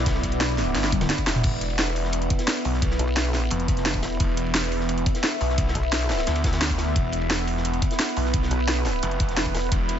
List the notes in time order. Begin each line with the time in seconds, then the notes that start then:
Already playing: B1 B3 E4 D5
0.06 kick, snare, closed hi-hat, ride
0.15 snare
0.23 B1, kick, closed hi-hat, ride
0.32 closed hi-hat, ride
0.40 snare, closed hi-hat, ride
0.58 snare, open hi-hat, ride
0.74 G1, snare, closed hi-hat, ride
0.84 snare, closed hi-hat
0.92 kick, closed hi-hat, high tom, ride
1.01 snare, closed hi-hat, mid tom, ride
1.10 snare, closed hi-hat
1.18 kick, closed hi-hat, ride
1.27 E1, snare, open hi-hat, ride
1.36 mid tom
1.43 E1 B4, kick, closed hi-hat, crash, ride
1.61 closed hi-hat, ride
1.70 ride
1.79 snare, closed hi-hat, ride
1.96 open hi-hat, ride
2.04 snare
2.12 closed hi-hat, ride
2.22 closed hi-hat, ride
2.30 kick, closed hi-hat, ride
2.38 snare, closed hi-hat
2.48 snare, closed hi-hat, ride
2.65 B1, open hi-hat, ride
2.73 snare
2.82 kick, closed hi-hat, ride
2.91 snare
2.99 B1, closed hi-hat, ride
3.08 ride
3.17 snare, closed hi-hat, ride
3.34 snare, open hi-hat, ride
3.50 F1, closed hi-hat, ride
3.60 closed hi-hat
3.68 kick, closed hi-hat, ride
3.77 snare, closed hi-hat
3.86 snare, closed hi-hat, ride
3.94 kick, ride
4.03 E1, snare, open hi-hat, ride
4.20 E1 E5, kick, closed hi-hat, ride
4.37 closed hi-hat, ride
4.46 ride
4.54 snare, closed hi-hat, ride
4.72 open hi-hat, ride
4.80 snare
4.89 closed hi-hat, ride
4.97 closed hi-hat, ride
5.06 kick, closed hi-hat, ride
5.15 snare, closed hi-hat
5.23 snare, closed hi-hat, ride
5.41 B1, open hi-hat, ride
5.49 snare
5.58 kick, closed hi-hat, ride
5.68 snare
5.75 B1, kick, closed hi-hat, ride
5.83 ride
5.92 snare, closed hi-hat, ride
6.09 snare, open hi-hat, ride
6.18 snare, ride
6.27 D2, snare, closed hi-hat, ride
6.36 closed hi-hat, ride
6.44 kick, snare, closed hi-hat, ride
6.53 snare, closed hi-hat, ride
6.61 snare, closed hi-hat, ride
6.69 kick, ride
6.78 snare, open hi-hat, ride
6.96 E1 B4, kick, closed hi-hat, ride
7.12 closed hi-hat, ride
7.22 ride
7.30 snare, closed hi-hat, ride
7.47 open hi-hat, ride
7.57 snare
7.65 closed hi-hat, ride
7.73 closed hi-hat, ride
7.82 kick, closed hi-hat, ride
7.91 snare, closed hi-hat
7.99 snare, closed hi-hat, ride
8.16 B1, open hi-hat, ride
8.25 snare
8.33 kick, closed hi-hat, ride
8.43 snare
8.51 B1, closed hi-hat, ride
8.60 ride
8.68 snare, closed hi-hat, ride
8.85 snare, open hi-hat, ride
9.03 F1, closed hi-hat, ride
9.11 closed hi-hat
9.20 kick, closed hi-hat, ride
9.29 snare, closed hi-hat
9.37 snare, closed hi-hat, ride
9.46 kick, ride
9.54 E1, snare, open hi-hat, ride
9.72 E1 G4, kick, closed hi-hat, ride
9.89 closed hi-hat, ride